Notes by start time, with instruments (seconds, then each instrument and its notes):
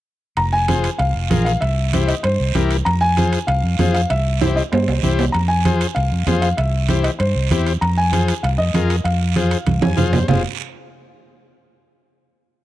0.37 fingered electric bass F1, felt piano A#5, high conga, high timbale, long guiro
0.53 felt piano G#5
0.68 transistor combo organ F4 G#4 C5, high conga, high timbale, short guiro
0.84 high timbale, short guiro
0.98 fingered electric bass C2, felt piano F5, high conga, high timbale, long guiro
1.15 fingered electric bass F1
1.30 fingered electric bass A#1, transistor combo organ F4 G#4 A#4, high conga, high timbale, short guiro
1.45 felt piano F5, high timbale, short guiro
1.61 fingered electric bass C2, felt piano E5, high conga, high timbale, long guiro
1.93 transistor combo organ E4 G4 C5, high conga, high timbale, short guiro
2.07 felt piano D#5, high timbale, short guiro
2.23 fingered electric bass G2, felt piano C5, high conga, high timbale, long guiro
2.40 fingered electric bass C2
2.55 fingered electric bass C2, transistor combo organ E4 G4 A#4, high conga, high timbale, short guiro
2.71 high timbale, short guiro
2.85 fingered electric bass F2, felt piano A#5, high conga, high timbale, long guiro
3.01 felt piano G#5
3.17 transistor combo organ F4 G#4 C5, high conga, high timbale, short guiro
3.33 high timbale, short guiro
3.47 fingered electric bass C2, felt piano F5, high conga, high timbale, long guiro
3.63 fingered electric bass F2
3.79 fingered electric bass F2, transistor combo organ F4 G#4 C5, high conga, high timbale, low timbale, short guiro
3.94 felt piano F5, high timbale, short guiro
4.10 fingered electric bass C2, felt piano E5, high conga, high timbale, long guiro
4.41 transistor combo organ E4 G4 C5, high conga, high timbale, short guiro
4.56 felt piano D#5, short guiro
4.72 fingered electric bass G2, felt piano C5, high conga, low timbale, long guiro
4.88 fingered electric bass C2, low timbale
5.03 fingered electric bass C2, transistor combo organ E4 G4 C5, high conga, short guiro
5.19 low timbale, short guiro
5.32 fingered electric bass F2, felt piano A#5, high conga, high timbale, long guiro
5.48 felt piano G#5
5.65 transistor combo organ F4 G#4 C5, high conga, high timbale, short guiro
5.81 high timbale, short guiro
5.95 fingered electric bass C2, felt piano F5, high conga, high timbale, long guiro
6.12 fingered electric bass F2
6.27 fingered electric bass F2, transistor combo organ F4 G#4 C5, high conga, high timbale, low timbale, short guiro
6.42 felt piano F5, high timbale, short guiro
6.57 fingered electric bass C2, felt piano E5, high conga, high timbale, long guiro
6.88 transistor combo organ E4 G4 C5, high conga, high timbale, short guiro
7.04 felt piano D#5, high timbale, short guiro
7.19 fingered electric bass G2, felt piano C5, high conga, high timbale, long guiro
7.35 fingered electric bass C2
7.51 fingered electric bass E2, transistor combo organ E4 G4 C5, high conga, high timbale, short guiro
7.66 high timbale, short guiro
7.81 fingered electric bass F2, felt piano A#5, high conga, high timbale, long guiro
7.98 felt piano G#5
8.12 transistor combo organ F4 G#4 C5, high conga, high timbale, short guiro
8.28 high timbale, short guiro
8.43 fingered electric bass C2, felt piano F5, high conga, high timbale, long guiro
8.58 fingered electric bass F2, felt piano D#5
8.74 fingered electric bass F2, transistor combo organ F4 G#4 A#4, high conga, high timbale, short guiro
8.90 high timbale, short guiro
9.04 fingered electric bass F2, felt piano F5, high conga, high timbale, long guiro
9.36 transistor combo organ F4 G#4 C5, high conga, high timbale, short guiro
9.51 high timbale, short guiro
9.66 fingered electric bass C2, high conga, high timbale, long guiro
9.82 fingered electric bass F2, transistor combo organ G#5, high conga, high timbale
9.97 fingered electric bass F2, transistor combo organ F4 G#4 C5 F5, low conga, high timbale, short guiro
10.13 transistor combo organ C5, low conga, low timbale, short guiro
10.28 fingered electric bass F1, transistor combo organ F4 G#4 C5, felt piano F5, low conga, low timbale, long guiro